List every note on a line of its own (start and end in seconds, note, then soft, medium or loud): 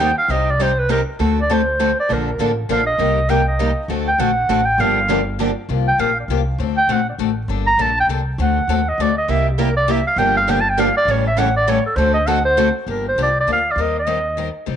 0.00 0.11 D#2 medium
0.00 0.10 G3 medium
0.00 0.10 A#3 loud
0.00 0.10 D#4 loud
0.00 0.10 G4 medium
0.00 0.10 A#4 medium
0.00 0.10 C5 loud
0.00 0.17 G5 loud
0.18 0.33 F5 medium
0.28 1.01 C2 medium
0.28 0.48 C3 medium
0.28 0.48 G3 medium
0.28 0.49 C4 medium
0.28 0.49 D#4 medium
0.28 0.49 G4 medium
0.28 0.52 D#5 medium
0.50 0.64 D5 medium
0.60 0.70 C3 medium
0.60 0.70 G3 medium
0.60 0.71 C4 medium
0.60 0.70 D#4 loud
0.60 0.71 G4 medium
0.60 0.81 C5 medium
0.79 0.91 B4 medium
0.89 1.00 C3 medium
0.89 1.00 G3 medium
0.89 1.00 C4 medium
0.89 1.00 D#4 medium
0.89 1.00 G4 loud
0.89 1.01 A#4 medium
1.19 1.91 D2 loud
1.19 1.38 D3 medium
1.19 1.39 A3 medium
1.19 1.39 C4 medium
1.19 1.39 F#4 medium
1.19 1.39 A4 medium
1.41 1.54 D5 medium
1.50 1.60 D3 medium
1.50 1.60 A3 medium
1.50 1.60 C4 medium
1.50 1.60 F#4 loud
1.50 1.61 A4 loud
1.50 1.99 C5 medium
1.80 1.90 D3 medium
1.80 1.90 A3 medium
1.80 1.90 C4 medium
1.80 1.90 F#4 medium
1.80 1.90 A4 medium
2.00 2.15 D5 medium
2.10 2.34 A#1 medium
2.10 2.29 D3 medium
2.10 2.29 F3 medium
2.10 2.29 A#3 medium
2.10 2.29 D4 medium
2.10 2.29 A4 medium
2.10 2.59 A#4 medium
2.39 2.64 A1 medium
2.39 2.50 D3 medium
2.39 2.50 F3 medium
2.39 2.50 A#3 medium
2.39 2.50 D4 medium
2.39 2.50 A4 loud
2.69 2.95 A#1 medium
2.69 2.80 D3 medium
2.69 2.80 F3 medium
2.69 2.80 A#3 medium
2.69 2.80 D4 medium
2.69 2.80 A4 loud
2.69 2.86 F5 medium
2.86 3.32 D#5 loud
2.98 3.71 C2 loud
2.98 3.18 C3 medium
2.98 3.18 G3 medium
2.98 3.19 A#3 medium
2.98 3.18 D#4 medium
2.98 3.18 G4 medium
3.29 3.39 C3 medium
3.29 3.40 G3 medium
3.29 3.40 A#3 medium
3.29 3.40 D#4 loud
3.29 3.40 G4 medium
3.29 3.47 G5 loud
3.48 3.87 D#5 medium
3.59 3.70 C3 medium
3.59 3.70 G3 medium
3.59 3.70 A#3 medium
3.59 3.70 D#4 medium
3.59 3.70 G4 medium
3.88 4.13 D2 medium
3.88 4.08 D3 medium
3.88 4.08 A3 medium
3.88 4.09 C4 medium
3.88 4.09 F#4 medium
3.88 4.09 A4 medium
4.08 4.21 G5 loud
4.18 4.44 A#1 medium
4.18 4.30 D3 medium
4.18 4.30 A3 loud
4.18 4.30 C4 medium
4.18 4.30 F#4 loud
4.18 4.30 A4 medium
4.18 4.67 F#5 loud
4.49 4.75 A1 medium
4.49 4.60 D3 medium
4.49 4.60 A3 medium
4.49 4.60 C4 medium
4.49 4.60 F#4 loud
4.49 4.60 A4 loud
4.65 4.82 G5 loud
4.78 5.50 G1 medium
4.78 4.98 D3 medium
4.78 4.98 F3 medium
4.78 4.99 A#3 medium
4.78 4.99 D4 medium
4.78 4.99 G4 medium
4.78 5.27 F5 medium
5.09 5.19 D3 medium
5.09 5.20 F3 loud
5.09 5.20 A#3 loud
5.09 5.20 D4 loud
5.09 5.20 G4 medium
5.39 5.49 D3 medium
5.39 5.49 F3 medium
5.39 5.50 A#3 medium
5.39 5.49 D4 loud
5.39 5.50 G4 loud
5.69 5.93 C2 loud
5.69 5.88 C3 medium
5.69 5.88 F3 medium
5.69 5.88 A#3 medium
5.69 5.88 F4 medium
5.69 5.88 G4 medium
5.88 6.01 G5 loud
5.98 6.24 A#1 medium
5.98 6.10 C3 medium
5.98 6.09 F3 medium
5.98 6.10 A#3 medium
5.98 6.10 F4 medium
5.98 6.10 G4 loud
5.98 6.17 F5 medium
6.20 6.25 D5 medium
6.28 6.54 C2 medium
6.28 6.40 C3 medium
6.28 6.40 F3 medium
6.28 6.40 A#3 medium
6.28 6.40 F4 medium
6.28 6.40 G4 loud
6.58 6.83 D2 loud
6.58 6.78 D3 medium
6.58 6.78 A3 medium
6.58 6.78 C4 medium
6.58 6.79 F#4 medium
6.58 6.79 A4 medium
6.77 6.93 G5 loud
6.87 7.13 A#1 medium
6.87 6.99 D3 medium
6.87 6.99 A3 medium
6.87 7.00 C4 loud
6.87 6.99 F#4 loud
6.87 7.00 A4 loud
6.92 7.08 F#5 medium
7.09 7.15 D5 medium
7.18 7.44 A1 medium
7.18 7.29 D3 medium
7.18 7.29 A3 medium
7.18 7.29 C4 medium
7.18 7.29 F#4 loud
7.18 7.30 A4 loud
7.48 7.72 G1 medium
7.48 7.68 D3 medium
7.48 7.68 G3 medium
7.48 7.68 A#3 medium
7.48 7.68 D4 medium
7.48 7.68 A4 medium
7.67 7.83 A#5 loud
7.78 8.03 A#1 medium
7.78 7.89 D3 medium
7.78 7.89 G3 medium
7.78 7.89 A#3 loud
7.78 7.89 D4 loud
7.78 7.89 A4 loud
7.78 7.97 A5 loud
8.00 8.06 G5 loud
8.07 8.33 C2 medium
8.07 8.19 D3 medium
8.07 8.19 G3 medium
8.07 8.20 A#3 medium
8.07 8.20 D4 loud
8.07 8.20 A4 medium
8.38 8.62 D2 loud
8.38 8.58 D3 medium
8.38 8.58 A3 medium
8.38 8.58 C4 medium
8.38 8.58 F#4 medium
8.38 8.58 A4 medium
8.38 8.90 F#5 loud
8.68 8.93 D#2 medium
8.68 8.79 D3 medium
8.68 8.79 A3 medium
8.68 8.79 C4 medium
8.68 8.80 F#4 loud
8.68 8.80 A4 loud
8.89 9.03 D#5 loud
8.98 9.24 D2 medium
8.98 9.10 D3 medium
8.98 9.10 A3 medium
8.98 9.10 C4 medium
8.98 9.10 F#4 medium
8.98 9.10 A4 medium
8.98 9.17 D5 medium
9.18 9.32 D#5 loud
9.28 10.00 C2 medium
9.28 9.47 C3 medium
9.28 9.47 G3 medium
9.28 9.47 A#3 medium
9.28 9.48 E4 medium
9.28 9.48 G4 medium
9.28 9.47 E5 loud
9.49 9.61 G4 medium
9.58 9.68 C3 medium
9.58 9.69 G3 medium
9.58 9.69 A#3 medium
9.58 9.69 E4 medium
9.58 9.69 G4 medium
9.58 9.76 A#4 medium
9.76 9.93 D5 loud
9.88 9.98 C3 medium
9.88 9.98 G3 medium
9.88 9.98 A#3 medium
9.88 9.98 E4 medium
9.88 9.98 G4 loud
9.88 10.07 E5 medium
10.07 10.20 F5 medium
10.16 10.89 G1 loud
10.16 10.37 D3 medium
10.16 10.37 F3 medium
10.16 10.37 A#3 medium
10.16 10.37 D4 medium
10.16 10.37 G4 medium
10.16 10.35 G5 loud
10.37 10.51 F5 loud
10.48 10.58 D3 medium
10.48 10.58 F3 medium
10.48 10.58 A#3 medium
10.48 10.59 D4 loud
10.48 10.59 G4 loud
10.48 10.62 G5 medium
10.61 10.71 A5 medium
10.70 10.81 G5 medium
10.78 10.88 D3 medium
10.78 10.88 F3 medium
10.78 10.88 A#3 loud
10.78 10.89 D4 loud
10.78 10.89 G4 medium
10.78 10.96 F5 medium
10.97 11.12 D5 loud
11.05 11.78 A1 medium
11.05 11.27 C#3 medium
11.05 11.27 E3 medium
11.05 11.27 G3 medium
11.05 11.27 A3 medium
11.05 11.27 C#4 medium
11.05 11.27 E4 medium
11.05 11.27 A4 medium
11.09 11.27 G4 medium
11.09 11.26 C#5 loud
11.27 11.40 E5 loud
11.37 11.48 C#3 loud
11.37 11.48 E3 medium
11.37 11.47 G3 medium
11.37 11.49 A3 loud
11.37 11.49 C#4 medium
11.37 11.48 E4 loud
11.37 11.48 G4 loud
11.37 11.48 A4 loud
11.37 11.55 F#5 loud
11.57 11.70 D5 loud
11.67 11.78 C#3 medium
11.67 11.78 E3 loud
11.67 11.78 G3 medium
11.67 11.78 A3 medium
11.67 11.78 C#4 medium
11.67 11.78 E4 loud
11.67 11.78 G4 loud
11.67 11.78 A4 loud
11.67 11.85 C#5 loud
11.86 11.97 A4 medium
11.96 12.68 D2 loud
11.96 12.17 D3 medium
11.96 12.17 A3 medium
11.96 12.17 C4 medium
11.96 12.17 F#4 medium
11.96 12.17 A4 medium
11.96 12.13 C5 medium
12.14 12.29 D#5 loud
12.27 12.38 D3 loud
12.27 12.38 A3 medium
12.27 12.38 C4 loud
12.27 12.38 F#4 medium
12.27 12.38 A4 loud
12.27 12.44 F#5 loud
12.45 12.73 C5 loud
12.57 12.67 D3 loud
12.57 12.68 A3 medium
12.57 12.68 C4 loud
12.57 12.68 F#4 loud
12.57 12.68 A4 loud
12.86 13.11 G1 medium
12.86 13.06 D3 medium
12.86 13.06 F3 medium
12.86 13.06 A#3 medium
12.86 13.06 D4 medium
12.86 13.06 G4 medium
12.86 13.04 A#4 medium
13.08 13.18 C5 medium
13.16 13.42 C2 medium
13.16 13.28 D3 medium
13.16 13.28 F3 medium
13.16 13.28 A#3 medium
13.16 13.28 D4 medium
13.16 13.28 G4 medium
13.23 13.36 D5 loud
13.40 13.49 D5 medium
13.46 13.72 D2 medium
13.46 13.57 D3 medium
13.46 13.58 F3 medium
13.46 13.58 A#3 medium
13.46 13.58 D4 medium
13.46 13.58 G4 medium
13.53 13.73 F5 loud
13.71 13.83 D5 medium
13.76 14.48 D#2 medium
13.76 13.96 D#3 medium
13.76 13.96 G3 medium
13.76 13.97 C4 medium
13.76 13.97 G4 medium
13.76 13.97 A#4 medium
13.81 13.96 D#5 medium
13.99 14.53 D#5 medium
14.07 14.17 D#3 medium
14.07 14.17 G3 medium
14.07 14.18 C4 medium
14.07 14.18 G4 medium
14.07 14.18 A#4 medium
14.37 14.47 D#3 medium
14.37 14.48 G3 medium
14.37 14.48 C4 medium
14.37 14.48 G4 medium
14.37 14.48 A#4 medium
14.66 14.76 C2 medium
14.66 14.76 C3 medium
14.66 14.76 G3 medium
14.66 14.76 C4 medium
14.66 14.76 D#4 medium
14.66 14.76 G4 medium